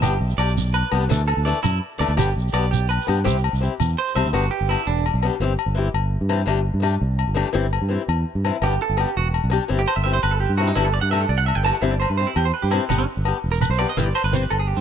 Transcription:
0.02 G1 B3 D4 G4, low agogo, shekere
0.20 B1
0.30 shekere
0.38 B1 D4 G4 D5, low agogo
0.48 shekere
0.58 shekere
0.66 shekere
0.74 B4, low agogo
0.91 C2 B3 D4 G4, low agogo
1.09 D2 E3 A3 D4 A4, shekere
1.28 A4, low agogo
1.37 D2
1.45 E3 A3 D4 A4 D5, shekere
1.63 F#2 E4, low agogo, shekere
1.98 D2 E3 A3 D4 A4 D5, low agogo, shekere
2.08 D2
2.17 G1 B3 D4 G4, low agogo, shekere
2.28 shekere
2.36 B1, shekere
2.48 shekere
2.53 B1 B3 D4 G4 D5, low agogo
2.71 G4, shekere
2.89 B4, low agogo
3.01 shekere
3.07 G2 B3 D4 G4, low agogo
3.24 C2 C4 E4 G4, shekere
3.37 shekere
3.44 low agogo
3.53 C2, shekere
3.61 C4 E4 G4, shekere
3.80 E2, low agogo, shekere
3.89 shekere
3.98 C5
4.07 shekere
4.15 C2 C4 E4 G4 E5, low agogo, shekere
4.25 D2, shekere
4.33 G1 B3 D4 F#4 G4, low agogo
4.51 G4
4.61 G1
4.68 B3 D4 E4 G4, low agogo
4.87 E1 D4
5.06 low agogo
5.14 B1
5.23 B3 D4 G4, low agogo
5.40 G1 E3 C4 G4, muted steel-string acoustic guitar stroke
5.59 low agogo
5.66 G1
5.75 E3 C4 E4 G4
5.94 G1, low agogo
6.21 G2
6.29 E3 C4 E4 G4, low agogo
6.46 G1 E3 A3 D4 G4, low agogo
6.74 G2
6.80 A3 D4 G4, muted steel-string acoustic guitar stroke, low agogo
7.01 C2
7.19 low agogo
7.27 G1
7.34 E3 A3 D4 G4, low agogo
7.53 G1 E3 C4 E4 G4
7.73 low agogo
7.82 G2
7.89 E3 C4 E4 G4
8.08 E2, low agogo
8.35 G2
8.44 E3 C4 E4, low agogo
8.62 G1 B3 D4 G4, low agogo
8.82 A4
8.89 G1
8.97 B3 D4 G4, low agogo
9.17 E1 F#4
9.34 low agogo
9.44 B1
9.50 D4 G4, muted steel-string acoustic guitar stroke, low agogo
9.68 G1 E3 C4 E4 G4
9.79 G4
9.87 C5, low agogo
9.96 G1 E5
10.04 E3 C4 E4 G4 E5
10.13 C5
10.23 G1 B4, low agogo
10.31 A4
10.40 G4
10.49 G2
10.57 E3 C4 E4 F#4 G4, low agogo
10.67 D#4
10.75 G1 E3 A3 D4 E4 G4, low agogo
10.85 A4
10.94 D5
11.01 G2 F#5
11.11 E3 A3 D4 G4 E5, low agogo
11.21 A4
11.29 C2 D5
11.38 F#5
11.46 E5, low agogo
11.55 G1 G5
11.63 E3 A3 D4 G4 A5, low agogo
11.74 F#5
11.81 G1 E3 C4 E4 G4 E5
11.91 D5
12.00 C5, low agogo
12.09 G2 B4
12.17 E3 C4 E4 G4 C5
12.27 E4
12.36 E2 G4, low agogo
12.45 C5
12.54 B4
12.62 G2 G4
12.71 E3 C4 E4 G4, low agogo
12.89 G1 B3 D4 G4, low agogo, shekere
12.98 D4
13.17 G1
13.25 B3 D4 G4, low agogo
13.44 E1
13.52 A#4, shekere
13.61 B4, low agogo, shekere
13.69 B1 C5, shekere
13.78 B3 D4 G4 D5, low agogo
13.88 D#5, shekere
13.97 G1 E3 E4 G4 E5, muted steel-string acoustic guitar stroke, shekere
14.06 D5
14.15 C5, low agogo, shekere
14.24 G1 B4, shekere
14.32 E3 C4 G4 C5, muted steel-string acoustic guitar stroke, shekere
14.42 B4, shekere
14.50 G1 A4, low agogo
14.59 G#4
14.68 G4
14.77 G2 C4

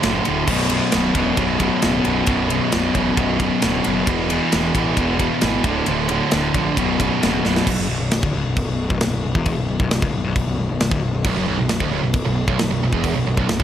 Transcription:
0.03 F#1 D2 A2 D3, snare, ride
0.25 D1 D2 A2 D3, ride
0.47 B0 B1 F#2 B2, kick, crash
0.70 B1 F#2 B2, ride
0.92 B0 B1 F#2 B2, snare, ride
1.15 E1 B1 F#2 B2, kick, ride
1.37 B0 B1 F#2 B2, kick, ride
1.58 B1 F#2 B2, kick, ride
1.81 D1 B1 F#2 B2, snare, ride
2.04 B0 B1 F#2 B2, ride
2.26 B0 B1 F#2 B2, kick, ride
2.50 B1 F#2 B2, ride
2.72 B0 B1 F#2 B2, snare, ride
2.95 E1 B1 F#2 B2, kick, ride
3.17 B0 B1 F#2 B2, kick, ride
3.40 B1 F#2 B2, kick, ride
3.61 D1 B1 F#2 B2, snare, ride
3.84 F#1 B1 F#2 B2, ride
4.06 E1 E2 B2 E3, kick, ride
4.28 E2 B2 E3, ride
4.52 E1 E2 B2 E3, snare, ride
4.73 A1 E2 B2 E3, kick, ride
4.96 E1 E2 B2 E3, kick, ride
5.18 E2 B2 E3, kick, ride
5.41 G#1 E2 B2 E3, snare, ride
5.64 D1 D2 A2 D3, kick, ride
5.86 D1 D2 A2 D3, ride
6.08 D2 A2 D3, ride
6.31 D1 D2 A2 D3, snare, ride
6.54 A#1 D2 A2 D3, kick, ride
6.77 B0 B1 F#2 B2, kick, ride
7.00 B1 F#2 B2, kick, ride
7.21 D1 B1 F#2 B2, snare, ride
7.45 B0 B1 F#2 B2, snare
7.56 snare
7.67 B0 B1, kick, crash
7.79 F#1 F#2
7.89 B0 B1
8.00 B0 B1
8.11 B0 B1, snare, crash
8.22 D1 D2, kick
8.34 C#1 C#2
8.44 B0 B1
8.56 kick, crash
8.66 B1
8.70 B0
8.89 B0 B1, kick
9.00 B1, snare, crash
9.05 B0
9.11 B1
9.16 B0
9.24 B0 B1
9.35 E1 E2, kick
9.46 kick, crash
9.57 B0 B1
9.68 B0 B1
9.80 B0 B1, kick
9.91 B0 B1, snare, crash
10.00 C#1 C#2, kick
10.13 B0 B1
10.24 B0 B1
10.35 B0 B1, kick, crash
10.46 B0 B1
10.57 B0 B1
10.69 B0 B1
10.80 B0 B1, snare, crash
10.91 D1 D2, kick
11.02 B0 B1
11.14 B0 B1
11.25 B0 B1, kick, crash
11.36 F#1 F#2
11.48 B0 B1
11.60 B0 B1
11.69 B0 B1, snare, crash
11.80 D1 D2, kick
11.92 C#1 C#2
12.04 B0 B1
12.13 kick, crash
12.26 B0 B1
12.47 B0 B1, kick
12.59 B0 B1, snare, crash
12.71 B0 B1
12.82 B0 B1
12.93 E1 E2, kick
13.04 kick, crash
13.16 B0 B1
13.26 B0 B1
13.37 B0 B1, kick
13.48 B0 B1, snare, crash
13.59 C#1 C#2, kick

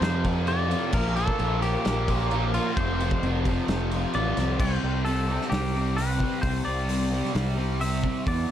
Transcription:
0.00 F2 C3 F3 C5, snare, ride
0.23 C3 F3, kick, ride
0.47 F2 C3 F3 D5, ride
0.68 C3 F3, ride
0.92 A#1 A#2 F3 A#3 A#4, kick, crash
1.16 F3 A#3 A4, ride
1.28 kick
1.38 A#1 A#2 F3 A#3, ride
1.61 F3 A#3 G4, ride
1.84 A#1 A#2 F3 A#3, snare, ride
2.08 F3 A#3, kick, ride
2.30 A#2 F3 A#3, ride
2.54 F3 A#3 F4, ride
2.76 F1 F2 C3 F3 C5, kick, ride
2.99 C3 F3, ride
3.11 kick
3.21 F1 F2 C3 F3, ride
3.44 C3 F3, kick, ride
3.67 F1 F2 C3 F3, snare, ride
3.90 C3 F3, ride
4.13 A1 F2 C3 F3 D5, ride
4.37 C2 C3 F3, snare, ride
4.59 C2 C3 G3 C4 C5, kick, crash
4.82 C2 G3 C4
5.04 C3 G3 C4 A4, open hi-hat
5.28 G3 C4
5.41 snare
5.50 C2 C3 G3 G4, snare, open hi-hat
5.54 C4
5.74 C3 G3 C4
5.97 C3 G3 C4 B4, open hi-hat
6.19 G3 C4, kick
6.42 C2 C3 G3 C4 C5, kick, open hi-hat
6.64 C2 G3 C4 D5
6.88 C3 G3 C4, open hi-hat
7.11 G3 C4
7.25 snare
7.33 C2 C3 G3 C4, snare, open hi-hat
7.56 C3 G3 C4
7.80 C3 G3 C4 E5, open hi-hat
8.03 G3 C4, kick
8.27 E2 B2 E3 D5, kick, open hi-hat

